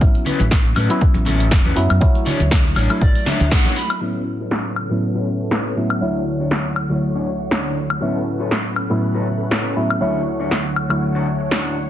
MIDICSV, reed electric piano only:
0, 0, Header, 1, 2, 480
1, 0, Start_track
1, 0, Key_signature, 3, "major"
1, 0, Tempo, 500000
1, 14, Time_signature, 4, 2, 24, 8
1, 11423, End_track
2, 0, Start_track
2, 0, Title_t, "Reed electric piano"
2, 0, Program_c, 0, 4
2, 3, Note_on_c, 0, 54, 76
2, 9, Note_on_c, 0, 59, 67
2, 14, Note_on_c, 0, 61, 66
2, 20, Note_on_c, 0, 64, 81
2, 831, Note_off_c, 0, 54, 0
2, 834, Note_off_c, 0, 59, 0
2, 836, Note_off_c, 0, 61, 0
2, 839, Note_off_c, 0, 64, 0
2, 857, Note_on_c, 0, 54, 97
2, 861, Note_on_c, 0, 59, 88
2, 867, Note_on_c, 0, 61, 87
2, 872, Note_on_c, 0, 64, 109
2, 1663, Note_off_c, 0, 54, 0
2, 1666, Note_off_c, 0, 59, 0
2, 1668, Note_off_c, 0, 61, 0
2, 1671, Note_off_c, 0, 64, 0
2, 1688, Note_on_c, 0, 54, 84
2, 1692, Note_on_c, 0, 59, 77
2, 1694, Note_on_c, 0, 61, 74
2, 1696, Note_on_c, 0, 64, 90
2, 1906, Note_off_c, 0, 54, 0
2, 1908, Note_off_c, 0, 59, 0
2, 1909, Note_off_c, 0, 61, 0
2, 1910, Note_off_c, 0, 64, 0
2, 1927, Note_on_c, 0, 54, 86
2, 1931, Note_on_c, 0, 57, 78
2, 1938, Note_on_c, 0, 73, 78
2, 1943, Note_on_c, 0, 64, 95
2, 2752, Note_off_c, 0, 54, 0
2, 2755, Note_off_c, 0, 57, 0
2, 2758, Note_off_c, 0, 73, 0
2, 2761, Note_off_c, 0, 64, 0
2, 2781, Note_on_c, 0, 54, 76
2, 2785, Note_on_c, 0, 57, 75
2, 2796, Note_on_c, 0, 64, 89
2, 3826, Note_off_c, 0, 54, 0
2, 3828, Note_off_c, 0, 57, 0
2, 3833, Note_off_c, 0, 64, 0
2, 3847, Note_on_c, 0, 45, 65
2, 3849, Note_on_c, 0, 54, 61
2, 3854, Note_on_c, 0, 59, 59
2, 3857, Note_on_c, 0, 61, 59
2, 3862, Note_on_c, 0, 64, 71
2, 4673, Note_off_c, 0, 45, 0
2, 4674, Note_off_c, 0, 54, 0
2, 4676, Note_off_c, 0, 59, 0
2, 4677, Note_off_c, 0, 61, 0
2, 4680, Note_off_c, 0, 64, 0
2, 4703, Note_on_c, 0, 45, 84
2, 4706, Note_on_c, 0, 54, 79
2, 4710, Note_on_c, 0, 59, 80
2, 4713, Note_on_c, 0, 61, 79
2, 4718, Note_on_c, 0, 64, 96
2, 5507, Note_off_c, 0, 45, 0
2, 5508, Note_off_c, 0, 54, 0
2, 5510, Note_off_c, 0, 59, 0
2, 5512, Note_off_c, 0, 61, 0
2, 5514, Note_off_c, 0, 64, 0
2, 5534, Note_on_c, 0, 45, 75
2, 5534, Note_on_c, 0, 54, 68
2, 5537, Note_on_c, 0, 59, 67
2, 5540, Note_on_c, 0, 61, 68
2, 5540, Note_on_c, 0, 64, 77
2, 5749, Note_off_c, 0, 45, 0
2, 5749, Note_off_c, 0, 54, 0
2, 5750, Note_off_c, 0, 59, 0
2, 5752, Note_off_c, 0, 61, 0
2, 5752, Note_off_c, 0, 64, 0
2, 5767, Note_on_c, 0, 38, 76
2, 5770, Note_on_c, 0, 54, 73
2, 5775, Note_on_c, 0, 57, 68
2, 5780, Note_on_c, 0, 73, 69
2, 5781, Note_on_c, 0, 64, 86
2, 6593, Note_off_c, 0, 38, 0
2, 6594, Note_off_c, 0, 54, 0
2, 6597, Note_off_c, 0, 57, 0
2, 6599, Note_off_c, 0, 73, 0
2, 6600, Note_off_c, 0, 64, 0
2, 6621, Note_on_c, 0, 38, 71
2, 6622, Note_on_c, 0, 54, 64
2, 6628, Note_on_c, 0, 57, 63
2, 6631, Note_on_c, 0, 73, 65
2, 6634, Note_on_c, 0, 64, 77
2, 7665, Note_off_c, 0, 38, 0
2, 7666, Note_off_c, 0, 54, 0
2, 7669, Note_off_c, 0, 57, 0
2, 7670, Note_off_c, 0, 73, 0
2, 7672, Note_off_c, 0, 64, 0
2, 7689, Note_on_c, 0, 45, 66
2, 7691, Note_on_c, 0, 54, 65
2, 7694, Note_on_c, 0, 59, 62
2, 7698, Note_on_c, 0, 61, 63
2, 7703, Note_on_c, 0, 64, 76
2, 8513, Note_off_c, 0, 45, 0
2, 8515, Note_off_c, 0, 54, 0
2, 8516, Note_off_c, 0, 59, 0
2, 8518, Note_off_c, 0, 61, 0
2, 8521, Note_off_c, 0, 64, 0
2, 8541, Note_on_c, 0, 45, 90
2, 8543, Note_on_c, 0, 54, 82
2, 8545, Note_on_c, 0, 59, 81
2, 8550, Note_on_c, 0, 61, 82
2, 8554, Note_on_c, 0, 64, 97
2, 9345, Note_off_c, 0, 45, 0
2, 9347, Note_off_c, 0, 54, 0
2, 9348, Note_off_c, 0, 59, 0
2, 9350, Note_off_c, 0, 61, 0
2, 9352, Note_off_c, 0, 64, 0
2, 9370, Note_on_c, 0, 45, 73
2, 9372, Note_on_c, 0, 54, 72
2, 9372, Note_on_c, 0, 59, 69
2, 9375, Note_on_c, 0, 61, 70
2, 9376, Note_on_c, 0, 64, 81
2, 9587, Note_off_c, 0, 45, 0
2, 9588, Note_off_c, 0, 54, 0
2, 9588, Note_off_c, 0, 59, 0
2, 9589, Note_off_c, 0, 61, 0
2, 9590, Note_off_c, 0, 64, 0
2, 9602, Note_on_c, 0, 38, 81
2, 9608, Note_on_c, 0, 54, 75
2, 9613, Note_on_c, 0, 57, 74
2, 9615, Note_on_c, 0, 73, 75
2, 9620, Note_on_c, 0, 64, 88
2, 10430, Note_off_c, 0, 38, 0
2, 10433, Note_off_c, 0, 54, 0
2, 10435, Note_off_c, 0, 57, 0
2, 10437, Note_off_c, 0, 73, 0
2, 10439, Note_off_c, 0, 64, 0
2, 10455, Note_on_c, 0, 38, 73
2, 10459, Note_on_c, 0, 54, 68
2, 10464, Note_on_c, 0, 57, 67
2, 10468, Note_on_c, 0, 73, 67
2, 10472, Note_on_c, 0, 64, 81
2, 11423, Note_off_c, 0, 38, 0
2, 11423, Note_off_c, 0, 54, 0
2, 11423, Note_off_c, 0, 57, 0
2, 11423, Note_off_c, 0, 64, 0
2, 11423, Note_off_c, 0, 73, 0
2, 11423, End_track
0, 0, End_of_file